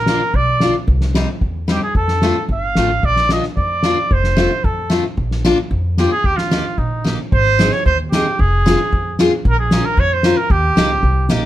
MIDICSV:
0, 0, Header, 1, 5, 480
1, 0, Start_track
1, 0, Key_signature, -3, "major"
1, 0, Tempo, 537153
1, 787, Time_signature, 2, 2, 24, 8
1, 6547, Key_signature, -4, "major"
1, 7026, Tempo, 529568
1, 10284, End_track
2, 0, Start_track
2, 0, Title_t, "Trumpet"
2, 0, Program_c, 0, 56
2, 0, Note_on_c, 0, 70, 98
2, 316, Note_on_c, 0, 74, 84
2, 330, Note_off_c, 0, 70, 0
2, 672, Note_off_c, 0, 74, 0
2, 1535, Note_on_c, 0, 67, 83
2, 1633, Note_off_c, 0, 67, 0
2, 1638, Note_on_c, 0, 68, 86
2, 1744, Note_off_c, 0, 68, 0
2, 1756, Note_on_c, 0, 69, 92
2, 2202, Note_off_c, 0, 69, 0
2, 2260, Note_on_c, 0, 77, 87
2, 2725, Note_on_c, 0, 74, 94
2, 2739, Note_off_c, 0, 77, 0
2, 2962, Note_off_c, 0, 74, 0
2, 2970, Note_on_c, 0, 75, 69
2, 3076, Note_off_c, 0, 75, 0
2, 3195, Note_on_c, 0, 74, 85
2, 3686, Note_on_c, 0, 72, 94
2, 3699, Note_off_c, 0, 74, 0
2, 4149, Note_on_c, 0, 69, 73
2, 4162, Note_off_c, 0, 72, 0
2, 4509, Note_off_c, 0, 69, 0
2, 5352, Note_on_c, 0, 67, 73
2, 5457, Note_off_c, 0, 67, 0
2, 5462, Note_on_c, 0, 68, 100
2, 5589, Note_on_c, 0, 67, 105
2, 5603, Note_off_c, 0, 68, 0
2, 5688, Note_on_c, 0, 65, 81
2, 5701, Note_off_c, 0, 67, 0
2, 6060, Note_on_c, 0, 63, 59
2, 6074, Note_off_c, 0, 65, 0
2, 6424, Note_off_c, 0, 63, 0
2, 6550, Note_on_c, 0, 72, 114
2, 6901, Note_on_c, 0, 73, 91
2, 6914, Note_off_c, 0, 72, 0
2, 7016, Note_off_c, 0, 73, 0
2, 7021, Note_on_c, 0, 72, 89
2, 7132, Note_off_c, 0, 72, 0
2, 7256, Note_on_c, 0, 67, 83
2, 7514, Note_on_c, 0, 68, 91
2, 7527, Note_off_c, 0, 67, 0
2, 8233, Note_off_c, 0, 68, 0
2, 8488, Note_on_c, 0, 70, 106
2, 8587, Note_off_c, 0, 70, 0
2, 8592, Note_on_c, 0, 68, 80
2, 8827, Note_on_c, 0, 70, 88
2, 8840, Note_off_c, 0, 68, 0
2, 8961, Note_on_c, 0, 73, 97
2, 8974, Note_off_c, 0, 70, 0
2, 9082, Note_on_c, 0, 72, 84
2, 9096, Note_off_c, 0, 73, 0
2, 9297, Note_on_c, 0, 70, 96
2, 9311, Note_off_c, 0, 72, 0
2, 9426, Note_on_c, 0, 67, 96
2, 9440, Note_off_c, 0, 70, 0
2, 10147, Note_off_c, 0, 67, 0
2, 10284, End_track
3, 0, Start_track
3, 0, Title_t, "Steel-string acoustic guitar"
3, 0, Program_c, 1, 25
3, 74, Note_on_c, 1, 58, 60
3, 79, Note_on_c, 1, 62, 56
3, 91, Note_on_c, 1, 65, 67
3, 179, Note_off_c, 1, 58, 0
3, 181, Note_off_c, 1, 62, 0
3, 187, Note_off_c, 1, 65, 0
3, 547, Note_on_c, 1, 58, 54
3, 558, Note_on_c, 1, 62, 47
3, 565, Note_on_c, 1, 65, 59
3, 655, Note_off_c, 1, 58, 0
3, 661, Note_off_c, 1, 62, 0
3, 665, Note_off_c, 1, 65, 0
3, 1029, Note_on_c, 1, 55, 78
3, 1034, Note_on_c, 1, 60, 54
3, 1043, Note_on_c, 1, 63, 73
3, 1136, Note_off_c, 1, 55, 0
3, 1138, Note_off_c, 1, 60, 0
3, 1143, Note_off_c, 1, 63, 0
3, 1500, Note_on_c, 1, 55, 53
3, 1510, Note_on_c, 1, 60, 44
3, 1516, Note_on_c, 1, 63, 46
3, 1610, Note_off_c, 1, 55, 0
3, 1616, Note_off_c, 1, 60, 0
3, 1616, Note_off_c, 1, 63, 0
3, 1991, Note_on_c, 1, 57, 57
3, 1996, Note_on_c, 1, 60, 46
3, 2005, Note_on_c, 1, 65, 61
3, 2098, Note_off_c, 1, 57, 0
3, 2100, Note_off_c, 1, 60, 0
3, 2105, Note_off_c, 1, 65, 0
3, 2473, Note_on_c, 1, 57, 55
3, 2478, Note_on_c, 1, 60, 40
3, 2488, Note_on_c, 1, 65, 60
3, 2583, Note_off_c, 1, 57, 0
3, 2584, Note_off_c, 1, 60, 0
3, 2590, Note_off_c, 1, 65, 0
3, 2954, Note_on_c, 1, 58, 59
3, 2964, Note_on_c, 1, 62, 47
3, 2970, Note_on_c, 1, 65, 63
3, 3065, Note_off_c, 1, 58, 0
3, 3070, Note_off_c, 1, 62, 0
3, 3073, Note_off_c, 1, 65, 0
3, 3426, Note_on_c, 1, 58, 56
3, 3434, Note_on_c, 1, 62, 55
3, 3441, Note_on_c, 1, 65, 58
3, 3542, Note_off_c, 1, 58, 0
3, 3545, Note_off_c, 1, 62, 0
3, 3549, Note_off_c, 1, 65, 0
3, 3901, Note_on_c, 1, 57, 59
3, 3911, Note_on_c, 1, 60, 51
3, 3915, Note_on_c, 1, 65, 66
3, 4017, Note_off_c, 1, 57, 0
3, 4022, Note_off_c, 1, 60, 0
3, 4024, Note_off_c, 1, 65, 0
3, 4376, Note_on_c, 1, 57, 65
3, 4384, Note_on_c, 1, 60, 50
3, 4391, Note_on_c, 1, 65, 61
3, 4492, Note_off_c, 1, 57, 0
3, 4496, Note_off_c, 1, 60, 0
3, 4500, Note_off_c, 1, 65, 0
3, 4867, Note_on_c, 1, 58, 70
3, 4871, Note_on_c, 1, 62, 74
3, 4877, Note_on_c, 1, 65, 78
3, 4975, Note_off_c, 1, 58, 0
3, 4977, Note_off_c, 1, 62, 0
3, 4980, Note_off_c, 1, 65, 0
3, 5345, Note_on_c, 1, 58, 64
3, 5351, Note_on_c, 1, 62, 38
3, 5360, Note_on_c, 1, 65, 56
3, 5453, Note_off_c, 1, 58, 0
3, 5453, Note_off_c, 1, 62, 0
3, 5459, Note_off_c, 1, 65, 0
3, 5821, Note_on_c, 1, 58, 59
3, 5825, Note_on_c, 1, 63, 53
3, 5833, Note_on_c, 1, 67, 66
3, 5929, Note_off_c, 1, 58, 0
3, 5932, Note_off_c, 1, 63, 0
3, 5936, Note_off_c, 1, 67, 0
3, 6294, Note_on_c, 1, 58, 49
3, 6300, Note_on_c, 1, 63, 49
3, 6313, Note_on_c, 1, 67, 50
3, 6408, Note_off_c, 1, 58, 0
3, 6411, Note_off_c, 1, 63, 0
3, 6417, Note_off_c, 1, 67, 0
3, 6780, Note_on_c, 1, 60, 62
3, 6788, Note_on_c, 1, 63, 52
3, 6797, Note_on_c, 1, 68, 62
3, 6892, Note_off_c, 1, 60, 0
3, 6897, Note_off_c, 1, 63, 0
3, 6898, Note_off_c, 1, 68, 0
3, 7269, Note_on_c, 1, 60, 66
3, 7277, Note_on_c, 1, 63, 53
3, 7281, Note_on_c, 1, 68, 61
3, 7379, Note_off_c, 1, 60, 0
3, 7383, Note_off_c, 1, 63, 0
3, 7385, Note_off_c, 1, 68, 0
3, 7747, Note_on_c, 1, 60, 59
3, 7755, Note_on_c, 1, 65, 50
3, 7764, Note_on_c, 1, 68, 62
3, 7857, Note_off_c, 1, 60, 0
3, 7862, Note_off_c, 1, 65, 0
3, 7866, Note_off_c, 1, 68, 0
3, 8230, Note_on_c, 1, 60, 61
3, 8237, Note_on_c, 1, 65, 65
3, 8243, Note_on_c, 1, 68, 83
3, 8339, Note_off_c, 1, 60, 0
3, 8342, Note_off_c, 1, 65, 0
3, 8345, Note_off_c, 1, 68, 0
3, 8711, Note_on_c, 1, 61, 64
3, 8718, Note_on_c, 1, 65, 54
3, 8725, Note_on_c, 1, 70, 55
3, 8818, Note_off_c, 1, 61, 0
3, 8821, Note_off_c, 1, 65, 0
3, 8823, Note_off_c, 1, 70, 0
3, 9181, Note_on_c, 1, 61, 68
3, 9190, Note_on_c, 1, 65, 59
3, 9195, Note_on_c, 1, 70, 66
3, 9291, Note_off_c, 1, 61, 0
3, 9295, Note_off_c, 1, 65, 0
3, 9298, Note_off_c, 1, 70, 0
3, 9660, Note_on_c, 1, 58, 71
3, 9666, Note_on_c, 1, 63, 63
3, 9670, Note_on_c, 1, 67, 63
3, 9771, Note_off_c, 1, 58, 0
3, 9774, Note_off_c, 1, 63, 0
3, 9776, Note_off_c, 1, 67, 0
3, 10138, Note_on_c, 1, 58, 71
3, 10146, Note_on_c, 1, 63, 62
3, 10149, Note_on_c, 1, 67, 65
3, 10253, Note_off_c, 1, 58, 0
3, 10255, Note_off_c, 1, 63, 0
3, 10257, Note_off_c, 1, 67, 0
3, 10284, End_track
4, 0, Start_track
4, 0, Title_t, "Upright bass"
4, 0, Program_c, 2, 32
4, 0, Note_on_c, 2, 34, 76
4, 135, Note_off_c, 2, 34, 0
4, 302, Note_on_c, 2, 35, 77
4, 616, Note_off_c, 2, 35, 0
4, 781, Note_on_c, 2, 36, 87
4, 1094, Note_off_c, 2, 36, 0
4, 1264, Note_on_c, 2, 40, 78
4, 1576, Note_off_c, 2, 40, 0
4, 1742, Note_on_c, 2, 41, 80
4, 2058, Note_off_c, 2, 41, 0
4, 2221, Note_on_c, 2, 31, 73
4, 2444, Note_off_c, 2, 31, 0
4, 2471, Note_on_c, 2, 33, 70
4, 2690, Note_off_c, 2, 33, 0
4, 2714, Note_on_c, 2, 34, 74
4, 3029, Note_off_c, 2, 34, 0
4, 3191, Note_on_c, 2, 41, 78
4, 3506, Note_off_c, 2, 41, 0
4, 3671, Note_on_c, 2, 29, 77
4, 3984, Note_off_c, 2, 29, 0
4, 4148, Note_on_c, 2, 41, 84
4, 4460, Note_off_c, 2, 41, 0
4, 4623, Note_on_c, 2, 34, 86
4, 4934, Note_off_c, 2, 34, 0
4, 5100, Note_on_c, 2, 41, 88
4, 5411, Note_off_c, 2, 41, 0
4, 5581, Note_on_c, 2, 39, 78
4, 5893, Note_off_c, 2, 39, 0
4, 6058, Note_on_c, 2, 34, 76
4, 6374, Note_off_c, 2, 34, 0
4, 6544, Note_on_c, 2, 32, 90
4, 6858, Note_off_c, 2, 32, 0
4, 7021, Note_on_c, 2, 39, 86
4, 7338, Note_off_c, 2, 39, 0
4, 7504, Note_on_c, 2, 29, 80
4, 7819, Note_off_c, 2, 29, 0
4, 7988, Note_on_c, 2, 41, 89
4, 8301, Note_off_c, 2, 41, 0
4, 8466, Note_on_c, 2, 34, 94
4, 8777, Note_off_c, 2, 34, 0
4, 8938, Note_on_c, 2, 41, 90
4, 9252, Note_off_c, 2, 41, 0
4, 9421, Note_on_c, 2, 39, 93
4, 9579, Note_off_c, 2, 39, 0
4, 9651, Note_on_c, 2, 37, 84
4, 9874, Note_off_c, 2, 37, 0
4, 9896, Note_on_c, 2, 36, 82
4, 10117, Note_off_c, 2, 36, 0
4, 10143, Note_on_c, 2, 34, 85
4, 10284, Note_off_c, 2, 34, 0
4, 10284, End_track
5, 0, Start_track
5, 0, Title_t, "Drums"
5, 57, Note_on_c, 9, 38, 74
5, 146, Note_off_c, 9, 38, 0
5, 303, Note_on_c, 9, 36, 55
5, 392, Note_off_c, 9, 36, 0
5, 539, Note_on_c, 9, 38, 74
5, 629, Note_off_c, 9, 38, 0
5, 785, Note_on_c, 9, 36, 66
5, 875, Note_off_c, 9, 36, 0
5, 899, Note_on_c, 9, 38, 51
5, 988, Note_off_c, 9, 38, 0
5, 1024, Note_on_c, 9, 38, 81
5, 1114, Note_off_c, 9, 38, 0
5, 1263, Note_on_c, 9, 36, 56
5, 1352, Note_off_c, 9, 36, 0
5, 1499, Note_on_c, 9, 38, 66
5, 1589, Note_off_c, 9, 38, 0
5, 1741, Note_on_c, 9, 36, 69
5, 1830, Note_off_c, 9, 36, 0
5, 1858, Note_on_c, 9, 38, 50
5, 1948, Note_off_c, 9, 38, 0
5, 1981, Note_on_c, 9, 38, 76
5, 2071, Note_off_c, 9, 38, 0
5, 2225, Note_on_c, 9, 36, 60
5, 2314, Note_off_c, 9, 36, 0
5, 2461, Note_on_c, 9, 38, 74
5, 2550, Note_off_c, 9, 38, 0
5, 2710, Note_on_c, 9, 36, 75
5, 2799, Note_off_c, 9, 36, 0
5, 2826, Note_on_c, 9, 38, 49
5, 2916, Note_off_c, 9, 38, 0
5, 2940, Note_on_c, 9, 38, 70
5, 3030, Note_off_c, 9, 38, 0
5, 3062, Note_on_c, 9, 38, 24
5, 3152, Note_off_c, 9, 38, 0
5, 3189, Note_on_c, 9, 36, 49
5, 3278, Note_off_c, 9, 36, 0
5, 3419, Note_on_c, 9, 38, 72
5, 3509, Note_off_c, 9, 38, 0
5, 3671, Note_on_c, 9, 36, 70
5, 3761, Note_off_c, 9, 36, 0
5, 3786, Note_on_c, 9, 38, 50
5, 3875, Note_off_c, 9, 38, 0
5, 3904, Note_on_c, 9, 38, 80
5, 3994, Note_off_c, 9, 38, 0
5, 4148, Note_on_c, 9, 36, 57
5, 4237, Note_off_c, 9, 36, 0
5, 4380, Note_on_c, 9, 38, 68
5, 4469, Note_off_c, 9, 38, 0
5, 4626, Note_on_c, 9, 36, 65
5, 4715, Note_off_c, 9, 36, 0
5, 4747, Note_on_c, 9, 38, 48
5, 4837, Note_off_c, 9, 38, 0
5, 4867, Note_on_c, 9, 38, 79
5, 4956, Note_off_c, 9, 38, 0
5, 5103, Note_on_c, 9, 36, 50
5, 5192, Note_off_c, 9, 36, 0
5, 5340, Note_on_c, 9, 38, 59
5, 5429, Note_off_c, 9, 38, 0
5, 5577, Note_on_c, 9, 36, 68
5, 5667, Note_off_c, 9, 36, 0
5, 5698, Note_on_c, 9, 38, 57
5, 5787, Note_off_c, 9, 38, 0
5, 5821, Note_on_c, 9, 38, 78
5, 5911, Note_off_c, 9, 38, 0
5, 6058, Note_on_c, 9, 36, 49
5, 6147, Note_off_c, 9, 36, 0
5, 6304, Note_on_c, 9, 38, 72
5, 6393, Note_off_c, 9, 38, 0
5, 6543, Note_on_c, 9, 36, 80
5, 6632, Note_off_c, 9, 36, 0
5, 6787, Note_on_c, 9, 38, 92
5, 6787, Note_on_c, 9, 44, 54
5, 6876, Note_off_c, 9, 38, 0
5, 6876, Note_off_c, 9, 44, 0
5, 6902, Note_on_c, 9, 38, 26
5, 6992, Note_off_c, 9, 38, 0
5, 7023, Note_on_c, 9, 36, 63
5, 7114, Note_off_c, 9, 36, 0
5, 7262, Note_on_c, 9, 38, 80
5, 7262, Note_on_c, 9, 44, 48
5, 7353, Note_off_c, 9, 38, 0
5, 7353, Note_off_c, 9, 44, 0
5, 7508, Note_on_c, 9, 36, 73
5, 7598, Note_off_c, 9, 36, 0
5, 7754, Note_on_c, 9, 38, 91
5, 7754, Note_on_c, 9, 44, 54
5, 7844, Note_off_c, 9, 38, 0
5, 7844, Note_off_c, 9, 44, 0
5, 7990, Note_on_c, 9, 36, 55
5, 8081, Note_off_c, 9, 36, 0
5, 8227, Note_on_c, 9, 38, 67
5, 8227, Note_on_c, 9, 44, 39
5, 8317, Note_off_c, 9, 38, 0
5, 8317, Note_off_c, 9, 44, 0
5, 8467, Note_on_c, 9, 36, 75
5, 8557, Note_off_c, 9, 36, 0
5, 8700, Note_on_c, 9, 38, 96
5, 8700, Note_on_c, 9, 44, 52
5, 8791, Note_off_c, 9, 38, 0
5, 8791, Note_off_c, 9, 44, 0
5, 8940, Note_on_c, 9, 36, 67
5, 9031, Note_off_c, 9, 36, 0
5, 9173, Note_on_c, 9, 38, 72
5, 9173, Note_on_c, 9, 44, 43
5, 9264, Note_off_c, 9, 38, 0
5, 9264, Note_off_c, 9, 44, 0
5, 9417, Note_on_c, 9, 36, 78
5, 9508, Note_off_c, 9, 36, 0
5, 9660, Note_on_c, 9, 38, 95
5, 9660, Note_on_c, 9, 44, 47
5, 9751, Note_off_c, 9, 38, 0
5, 9751, Note_off_c, 9, 44, 0
5, 9896, Note_on_c, 9, 36, 54
5, 9987, Note_off_c, 9, 36, 0
5, 10131, Note_on_c, 9, 38, 65
5, 10131, Note_on_c, 9, 44, 45
5, 10222, Note_off_c, 9, 38, 0
5, 10222, Note_off_c, 9, 44, 0
5, 10284, End_track
0, 0, End_of_file